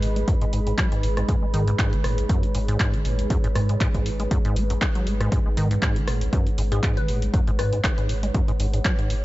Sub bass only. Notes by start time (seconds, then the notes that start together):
0.03 G#1
0.53 G#1
1.03 G#1
1.42 G#1
1.54 G#2
1.93 G#1
2.04 G#1
2.55 G#1
3.05 G#1
3.44 G#1
3.55 G#2
3.94 G#1
4.06 G#1
4.56 G#1
5.07 G#1
5.46 G#1
5.57 G#2
5.96 G#1
6.08 G#1
6.58 G#1
7.08 G#1
7.47 G#1
7.59 G#2
7.98 G#1
8.09 G#1
8.60 G#1
9.10 G#1